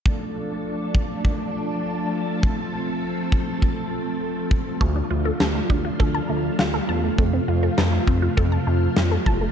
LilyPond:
<<
  \new Staff \with { instrumentName = "Synth arpeggio sound" } { \time 4/4 \key d \minor \tempo 4 = 101 r1 | r1 | a16 d'16 f'16 a'16 a''16 a16 d'16 f'16 a'16 a''16 a16 r16 f'16 a'16 a''16 a16 | a16 c'16 f'16 a'16 a''16 a16 c'16 f'16 a'16 a''16 a16 r16 f'16 a'16 a''16 a16 | }
  \new Staff \with { instrumentName = "String machine" } { \time 4/4 \key d \minor << { <f a a'>1~ | <f a a'>1 | <d f f'>1 | <c f f'>1 | } \\ { d'1 | c'1 | a1~ | a1 | } >> }
  \new Staff \with { instrumentName = "Analog synth bass" } { \clef bass \time 4/4 \key d \minor r1 | r1 | d,8 d,8 d,8 d,8 d,8 d,8 d,8 e,8 | f,8 f,8 f,8 f,8 f,8 f,8 f,8 f,,8 | }
  \new DrumStaff \with { instrumentName = "Drums" } \drummode { \time 4/4 bd4 r8 bd8 bd4 r4 | bd4 r8 bd8 bd4 r8 bd8 | bd4 sn8 bd8 bd4 sn4 | bd4 sn8 bd8 bd4 sn8 bd8 | }
>>